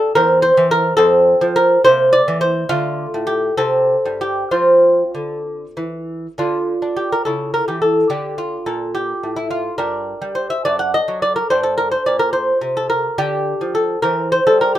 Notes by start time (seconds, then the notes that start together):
Already playing: A4
0.15 E2 C4 A#4
0.42 C5
0.57 E3
0.71 A#4
0.97 F2 C4 A4
1.41 F3
1.56 A#4
1.84 C3 A#3 C5
2.13 D5
2.28 E3
2.41 C5
2.69 D3 A3 F4
3.14 A2
3.27 G4
3.57 C3 C4 A4
4.06 G2
4.21 G4
4.51 F3 C4 F4
5.14 D3
5.77 E3
6.38 D3 D4 F4
6.82 D4
6.96 G4
7.12 A#4
7.25 C#3 E4 A4
7.54 A#4
7.68 E3 G4
7.82 A4
8.10 D3 D4 G4
8.38 F4
8.66 A#2 A4
8.95 G4
9.23 A2
9.36 E4
9.51 F4
9.78 G2 D4 A#4
10.22 G3
10.35 C5
10.50 E5
10.65 F#2 D4 D5
10.79 F#5
10.94 D#5
11.08 F#3
11.22 D5
11.36 A#4
11.50 G2 D4 C5
11.63 A4
11.78 A#4
11.91 C5
12.06 A#2 D5
12.19 A#4
12.33 C5
12.61 C3
12.77 A4
12.90 A#4
13.18 D3 D4 G4
13.61 F3
13.75 A4
14.02 E3 C4 A#4
14.32 C5
14.47 G3 A4
14.61 A#4
14.75 G4